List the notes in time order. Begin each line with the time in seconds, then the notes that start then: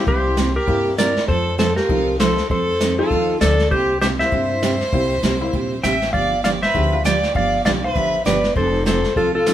Already playing: G3 A#3 C4 E4
0.07 C2 C3 G3 A#3 E4 G4 C5, brush sweep, kick
0.37 C3 G3 A#3 E4 G4, snare, hi-hat pedal
0.56 G4 A#4
0.67 G2 C3 G3 A#3 C4 E4 G4, brush sweep, kick
0.98 C3 G3 A#3 E4 G4 A#4 D5, snare, hi-hat pedal
1.17 snare
1.28 F2 F3 C4 D#4 A4 C5, brush sweep, kick
1.58 F3 C4 D#4 A4 C5, snare, hi-hat pedal
1.76 F4 G4 A#4, snare
1.89 C2 F3 C4 D#4 A4, brush sweep, kick
2.20 F3 C4 D#4 A4 C5, snare, hi-hat pedal
2.38 snare
2.50 F2 F3 C4 D#4 A4 C5, brush sweep, kick
2.80 F3 C4 D#4 A4, snare, hi-hat pedal
2.98 F3 A3 C4 D#4 F4 A4
3.11 D#2 F3 C4 D#4 A4, brush sweep, kick
3.41 D2 F3 C4 D#4 A4 D5, snare, hi-hat pedal
3.59 snare
3.71 C2 C3 G3 A#3 E4 G4 C5, brush sweep, kick
4.01 C3 G3 A#3 E4 G4 C5, snare, hi-hat pedal
4.19 G3 A#3 C4 E4 C5 E5, snare
4.32 G2 C3 G3 A#3 E4 G4, brush sweep, kick
4.63 C3 G3 A#3 E4 G4, snare, hi-hat pedal
4.81 snare
4.93 C2 C3 G3 A#3 C4 E4 G4, brush sweep, kick
5.22 C2 C3 G3 A#3 E4 G4, snare, hi-hat pedal
5.41 G3 A#3 C4 E4
5.53 A#1 C3 G3 A#3 E4 G4, brush sweep, kick
5.83 A1 C3 G3 A#3 E4 G4 E5 G5, snare, hi-hat pedal
6.02 snare
6.13 G1 D3 F3 B3 D4 G4 D5 F5, brush sweep, kick
6.44 D3 F3 B3 D4 G4 D5 F5, snare, hi-hat pedal
6.62 B4 C5 E5, snare
6.74 D2 D3 F3 G#3 B3 C4 D4 D#4 F#4 G4, brush sweep, kick
6.92 G3 B3 D4 F4
7.04 D3 F3 B3 D4 G4 D5 G5, snare, hi-hat pedal
7.23 snare
7.34 G1 D3 F3 B3 D4 G4 D5 F5, brush sweep, kick
7.65 B1 D3 F3 G3 B3 D4 F4 G4 D5 F5, snare, hi-hat pedal
7.84 B4 C5 E5
7.95 A1 D3 F3 B3 D4 G4, brush sweep, kick
8.25 G1 D3 F3 B3 D4 G4 B4 D5, snare, hi-hat pedal
8.44 snare
8.55 F1 F3 C4 D#4 A4 C5, brush sweep, kick
8.85 F3 C4 D#4 A4 C5, snare, hi-hat pedal
9.04 snare
9.16 C2 F3 C4 D#4 F4 A4, brush sweep, kick
9.34 F4 A4
9.46 F3 A3 C4 D#4 F4 A4, snare, hi-hat pedal